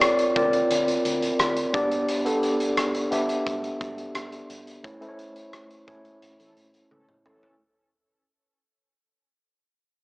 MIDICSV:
0, 0, Header, 1, 5, 480
1, 0, Start_track
1, 0, Tempo, 689655
1, 1450, Time_signature, 4, 2, 24, 8
1, 6985, End_track
2, 0, Start_track
2, 0, Title_t, "Tine electric piano"
2, 0, Program_c, 0, 4
2, 0, Control_c, 0, 64, 127
2, 0, Note_on_c, 0, 60, 80
2, 0, Note_on_c, 0, 65, 74
2, 0, Note_on_c, 0, 70, 75
2, 0, Note_on_c, 0, 73, 73
2, 0, Note_on_c, 0, 74, 91
2, 202, Note_off_c, 0, 60, 0
2, 204, Note_off_c, 0, 65, 0
2, 205, Note_off_c, 0, 70, 0
2, 229, Note_off_c, 0, 74, 0
2, 247, Note_on_c, 0, 60, 75
2, 250, Note_on_c, 0, 65, 72
2, 252, Note_on_c, 0, 70, 70
2, 255, Note_on_c, 0, 74, 85
2, 1134, Note_off_c, 0, 60, 0
2, 1136, Note_off_c, 0, 65, 0
2, 1137, Note_off_c, 0, 70, 0
2, 1138, Note_off_c, 0, 74, 0
2, 1207, Note_on_c, 0, 59, 82
2, 1210, Note_on_c, 0, 62, 76
2, 1213, Note_on_c, 0, 67, 74
2, 1215, Note_on_c, 0, 74, 91
2, 1219, Control_c, 0, 64, 0
2, 1222, Note_off_c, 0, 73, 0
2, 1361, Control_c, 0, 64, 127
2, 1541, Note_off_c, 0, 59, 0
2, 1542, Note_off_c, 0, 62, 0
2, 1544, Note_off_c, 0, 67, 0
2, 1545, Note_off_c, 0, 74, 0
2, 1567, Note_on_c, 0, 59, 83
2, 1570, Note_on_c, 0, 62, 71
2, 1573, Note_on_c, 0, 67, 72
2, 1576, Note_on_c, 0, 69, 85
2, 2122, Note_off_c, 0, 59, 0
2, 2124, Note_off_c, 0, 62, 0
2, 2125, Note_off_c, 0, 67, 0
2, 2127, Note_off_c, 0, 69, 0
2, 2167, Note_on_c, 0, 59, 80
2, 2170, Note_on_c, 0, 62, 74
2, 2172, Note_on_c, 0, 67, 69
2, 2175, Note_on_c, 0, 76, 89
2, 3054, Note_off_c, 0, 59, 0
2, 3056, Note_off_c, 0, 62, 0
2, 3057, Note_off_c, 0, 67, 0
2, 3058, Note_off_c, 0, 76, 0
2, 3366, Note_on_c, 0, 57, 73
2, 3369, Note_on_c, 0, 61, 62
2, 3371, Note_on_c, 0, 64, 65
2, 3374, Note_on_c, 0, 73, 79
2, 3378, Control_c, 0, 64, 0
2, 3479, Note_off_c, 0, 57, 0
2, 3480, Note_off_c, 0, 61, 0
2, 3482, Note_off_c, 0, 64, 0
2, 3483, Note_off_c, 0, 73, 0
2, 3486, Note_on_c, 0, 57, 76
2, 3489, Note_on_c, 0, 61, 69
2, 3492, Note_on_c, 0, 64, 67
2, 3494, Note_on_c, 0, 72, 68
2, 3508, Control_c, 0, 64, 127
2, 3538, Note_off_c, 0, 72, 0
2, 3539, Note_on_c, 0, 73, 86
2, 4042, Note_off_c, 0, 57, 0
2, 4043, Note_off_c, 0, 61, 0
2, 4045, Note_off_c, 0, 64, 0
2, 4069, Note_off_c, 0, 73, 0
2, 4087, Note_on_c, 0, 57, 75
2, 4089, Note_on_c, 0, 61, 68
2, 4092, Note_on_c, 0, 64, 67
2, 4095, Note_on_c, 0, 73, 81
2, 4974, Note_off_c, 0, 57, 0
2, 4975, Note_off_c, 0, 61, 0
2, 4977, Note_off_c, 0, 64, 0
2, 4978, Note_off_c, 0, 73, 0
2, 5300, Control_c, 0, 64, 0
2, 6985, End_track
3, 0, Start_track
3, 0, Title_t, "Analog polysynth"
3, 0, Program_c, 1, 90
3, 4451, Note_on_c, 1, 52, 76
3, 4451, Note_on_c, 1, 61, 74
3, 4451, Note_on_c, 1, 69, 84
3, 4549, Note_off_c, 1, 52, 0
3, 4549, Note_off_c, 1, 61, 0
3, 4549, Note_off_c, 1, 69, 0
3, 4811, Note_on_c, 1, 52, 83
3, 4811, Note_on_c, 1, 61, 84
3, 4811, Note_on_c, 1, 69, 97
3, 4913, Note_off_c, 1, 52, 0
3, 4913, Note_off_c, 1, 61, 0
3, 4913, Note_off_c, 1, 69, 0
3, 5051, Note_on_c, 1, 52, 88
3, 5051, Note_on_c, 1, 61, 89
3, 5051, Note_on_c, 1, 69, 100
3, 5255, Note_off_c, 1, 52, 0
3, 5255, Note_off_c, 1, 61, 0
3, 5255, Note_off_c, 1, 69, 0
3, 6985, End_track
4, 0, Start_track
4, 0, Title_t, "Fingered electric bass"
4, 0, Program_c, 2, 33
4, 0, Note_on_c, 2, 38, 101
4, 103, Note_off_c, 2, 38, 0
4, 251, Note_on_c, 2, 38, 92
4, 424, Note_off_c, 2, 38, 0
4, 492, Note_on_c, 2, 38, 92
4, 664, Note_off_c, 2, 38, 0
4, 731, Note_on_c, 2, 38, 89
4, 903, Note_off_c, 2, 38, 0
4, 970, Note_on_c, 2, 38, 82
4, 1143, Note_off_c, 2, 38, 0
4, 1211, Note_on_c, 2, 31, 84
4, 1816, Note_off_c, 2, 31, 0
4, 2171, Note_on_c, 2, 31, 87
4, 2343, Note_off_c, 2, 31, 0
4, 2412, Note_on_c, 2, 31, 89
4, 2584, Note_off_c, 2, 31, 0
4, 2651, Note_on_c, 2, 31, 88
4, 2824, Note_off_c, 2, 31, 0
4, 2890, Note_on_c, 2, 31, 89
4, 3063, Note_off_c, 2, 31, 0
4, 3130, Note_on_c, 2, 31, 86
4, 3371, Note_off_c, 2, 31, 0
4, 3371, Note_on_c, 2, 33, 97
4, 3943, Note_off_c, 2, 33, 0
4, 4091, Note_on_c, 2, 33, 92
4, 4264, Note_off_c, 2, 33, 0
4, 4332, Note_on_c, 2, 33, 77
4, 4504, Note_off_c, 2, 33, 0
4, 4571, Note_on_c, 2, 33, 79
4, 4744, Note_off_c, 2, 33, 0
4, 4812, Note_on_c, 2, 33, 78
4, 4984, Note_off_c, 2, 33, 0
4, 5051, Note_on_c, 2, 33, 87
4, 5223, Note_off_c, 2, 33, 0
4, 6985, End_track
5, 0, Start_track
5, 0, Title_t, "Drums"
5, 10, Note_on_c, 9, 42, 74
5, 11, Note_on_c, 9, 37, 110
5, 79, Note_off_c, 9, 42, 0
5, 81, Note_off_c, 9, 37, 0
5, 131, Note_on_c, 9, 42, 48
5, 200, Note_off_c, 9, 42, 0
5, 250, Note_on_c, 9, 42, 58
5, 251, Note_on_c, 9, 36, 97
5, 320, Note_off_c, 9, 42, 0
5, 321, Note_off_c, 9, 36, 0
5, 370, Note_on_c, 9, 42, 46
5, 439, Note_off_c, 9, 42, 0
5, 491, Note_on_c, 9, 42, 86
5, 561, Note_off_c, 9, 42, 0
5, 613, Note_on_c, 9, 42, 50
5, 682, Note_off_c, 9, 42, 0
5, 731, Note_on_c, 9, 42, 62
5, 801, Note_off_c, 9, 42, 0
5, 852, Note_on_c, 9, 42, 41
5, 921, Note_off_c, 9, 42, 0
5, 970, Note_on_c, 9, 42, 78
5, 973, Note_on_c, 9, 37, 102
5, 1040, Note_off_c, 9, 42, 0
5, 1042, Note_off_c, 9, 37, 0
5, 1090, Note_on_c, 9, 42, 48
5, 1160, Note_off_c, 9, 42, 0
5, 1212, Note_on_c, 9, 36, 99
5, 1213, Note_on_c, 9, 42, 66
5, 1281, Note_off_c, 9, 36, 0
5, 1283, Note_off_c, 9, 42, 0
5, 1333, Note_on_c, 9, 42, 46
5, 1403, Note_off_c, 9, 42, 0
5, 1451, Note_on_c, 9, 42, 67
5, 1521, Note_off_c, 9, 42, 0
5, 1573, Note_on_c, 9, 42, 42
5, 1643, Note_off_c, 9, 42, 0
5, 1691, Note_on_c, 9, 42, 52
5, 1761, Note_off_c, 9, 42, 0
5, 1811, Note_on_c, 9, 42, 49
5, 1880, Note_off_c, 9, 42, 0
5, 1930, Note_on_c, 9, 42, 78
5, 1931, Note_on_c, 9, 37, 101
5, 1999, Note_off_c, 9, 42, 0
5, 2001, Note_off_c, 9, 37, 0
5, 2050, Note_on_c, 9, 42, 48
5, 2120, Note_off_c, 9, 42, 0
5, 2170, Note_on_c, 9, 42, 59
5, 2240, Note_off_c, 9, 42, 0
5, 2290, Note_on_c, 9, 42, 43
5, 2360, Note_off_c, 9, 42, 0
5, 2412, Note_on_c, 9, 36, 75
5, 2412, Note_on_c, 9, 42, 85
5, 2481, Note_off_c, 9, 42, 0
5, 2482, Note_off_c, 9, 36, 0
5, 2533, Note_on_c, 9, 42, 50
5, 2603, Note_off_c, 9, 42, 0
5, 2651, Note_on_c, 9, 36, 82
5, 2651, Note_on_c, 9, 42, 65
5, 2721, Note_off_c, 9, 36, 0
5, 2721, Note_off_c, 9, 42, 0
5, 2771, Note_on_c, 9, 42, 38
5, 2841, Note_off_c, 9, 42, 0
5, 2888, Note_on_c, 9, 42, 74
5, 2891, Note_on_c, 9, 37, 107
5, 2958, Note_off_c, 9, 42, 0
5, 2960, Note_off_c, 9, 37, 0
5, 3009, Note_on_c, 9, 42, 43
5, 3078, Note_off_c, 9, 42, 0
5, 3132, Note_on_c, 9, 42, 67
5, 3202, Note_off_c, 9, 42, 0
5, 3252, Note_on_c, 9, 42, 43
5, 3322, Note_off_c, 9, 42, 0
5, 3371, Note_on_c, 9, 36, 100
5, 3371, Note_on_c, 9, 42, 65
5, 3440, Note_off_c, 9, 36, 0
5, 3440, Note_off_c, 9, 42, 0
5, 3493, Note_on_c, 9, 42, 41
5, 3562, Note_off_c, 9, 42, 0
5, 3611, Note_on_c, 9, 42, 52
5, 3681, Note_off_c, 9, 42, 0
5, 3730, Note_on_c, 9, 42, 45
5, 3799, Note_off_c, 9, 42, 0
5, 3849, Note_on_c, 9, 42, 73
5, 3851, Note_on_c, 9, 37, 96
5, 3919, Note_off_c, 9, 42, 0
5, 3920, Note_off_c, 9, 37, 0
5, 3971, Note_on_c, 9, 42, 46
5, 4041, Note_off_c, 9, 42, 0
5, 4090, Note_on_c, 9, 42, 60
5, 4091, Note_on_c, 9, 36, 89
5, 4160, Note_off_c, 9, 42, 0
5, 4161, Note_off_c, 9, 36, 0
5, 4210, Note_on_c, 9, 42, 44
5, 4279, Note_off_c, 9, 42, 0
5, 4331, Note_on_c, 9, 42, 81
5, 4401, Note_off_c, 9, 42, 0
5, 4453, Note_on_c, 9, 42, 47
5, 4522, Note_off_c, 9, 42, 0
5, 4571, Note_on_c, 9, 42, 63
5, 4641, Note_off_c, 9, 42, 0
5, 4690, Note_on_c, 9, 42, 37
5, 4760, Note_off_c, 9, 42, 0
5, 4811, Note_on_c, 9, 48, 48
5, 4880, Note_off_c, 9, 48, 0
5, 4931, Note_on_c, 9, 47, 49
5, 5001, Note_off_c, 9, 47, 0
5, 5051, Note_on_c, 9, 45, 74
5, 5121, Note_off_c, 9, 45, 0
5, 5172, Note_on_c, 9, 43, 79
5, 5241, Note_off_c, 9, 43, 0
5, 6985, End_track
0, 0, End_of_file